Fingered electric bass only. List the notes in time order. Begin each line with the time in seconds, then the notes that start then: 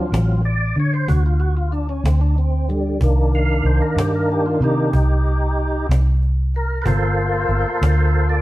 0.12 A1
0.76 D3
1.08 D2
2.04 D2
3.01 C2
3.64 C2
3.96 G2
4.61 C3
4.93 C2
5.89 C2
6.86 G1
7.49 G1
7.81 D2